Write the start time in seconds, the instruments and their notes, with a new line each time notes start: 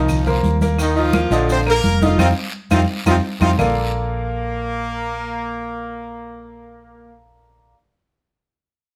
Already playing: fingered electric bass C2, grand piano D#3 D#4 D#5, trombone section F3, horn section A#3 A#4
0.08 high conga, low conga, long guiro, claves, maracas
0.27 grand piano A#3 A#4 C5, high conga, low conga, maracas
0.43 fingered electric bass D#2, high conga, short guiro, maracas
0.61 grand piano A#3 A#4, high conga, short guiro, maracas
0.78 trombone section D#3, horn section D#4 D#5, high conga, long guiro, claves, maracas
0.96 grand piano D#3 D#4 D#5, horn section F3 F4, high conga, maracas
1.13 grand piano A#3 A#4, high conga, short guiro, claves, maracas
1.31 fingered electric bass A#1, trombone section D3, grand piano F3 F4 D#5, high conga, short guiro, maracas
1.49 horn section C4 C5, high conga, long guiro, maracas
1.66 grand piano A#3 A#4, horn section A#3 A#4, high conga, claves, maracas
1.83 fingered electric bass F1, high conga, short guiro, maracas
2.01 trombone section D3, grand piano D#3 D#4 D#5, horn section F3 F4, high conga, short guiro, maracas
2.18 fingered electric bass F2, trombone section C3 D#3 F3, grand piano C4 D#4 F4, horn section C4 D#4 F4, high conga, long guiro, claves, maracas
2.71 fingered electric bass F2, trombone section C3 D#3 F3, grand piano C4 D#4 F4, horn section C4 D#4 F4, high conga, long guiro, claves, maracas
3.06 fingered electric bass F2, trombone section C3 D#3 F3, horn section C4 D#4 F4, grand piano C4 D#4 F4, high conga, claves, maracas
3.40 fingered electric bass F2, trombone section C3 D#3 F3, grand piano C4 D#4 F4, horn section C4 D#4 F4, high conga, long guiro, claves, maracas
3.57 fingered electric bass A#1, trombone section A#2, grand piano A#3 F4 A4 A#4 D5 F5, horn section A#3, low conga, long guiro, claves, maracas